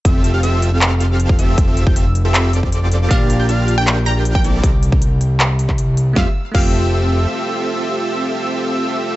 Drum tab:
CC |----------------|----------------|----------------|----------------|
HH |x-x-x-x-x-x-x-x-|x-x-x-x-x-x-x-x-|x-x-x-x-x-x-x-x-|x-x-x-x-x-x-x-x-|
CP |--------x-------|--------x-------|--------x-------|--------x--x----|
SD |----------------|----------------|----------------|----------------|
BD |o------------o--|o--o-------o----|o------------o--|o--o-------o----|

CC |----x-----------|----------------|
HH |----------------|----------------|
CP |----------------|----------------|
SD |o---------------|----------------|
BD |o---o-----------|----------------|